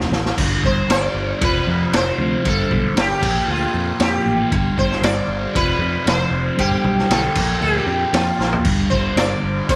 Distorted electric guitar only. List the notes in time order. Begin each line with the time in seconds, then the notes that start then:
Already playing: C3 F3
0.37 G2 D3 G3
0.63 D3 G3
0.88 G2 D3 G3
1.41 F2 C3 F3
1.67 C3 F3
1.93 F2 C3 F3
2.18 C3 F3
2.43 G2 D3 G3
2.69 D3 G3
2.94 G2 D3 G3
3.21 A#2 F3 A#3
3.73 F3 A#3
3.99 A#2 F3 A#3
4.25 F3 A#3
4.51 G2 D3 G3
4.77 D3 G3
5.02 G2 D3 G3
5.54 F2 C3 F3
5.79 C3 F3
6.06 F2 C3 F3
6.33 C3 F3
6.57 G2 D3 G3
6.84 D3 G3
7.10 G2 D3 G3
7.36 A#2 F3 A#3
7.87 F3 A#3
8.14 A#2 F3 A#3
8.39 F3 A#3
8.64 G2 D3 G3
8.91 D3 G3
9.17 G2 D3 G3
9.69 F2 C3 F3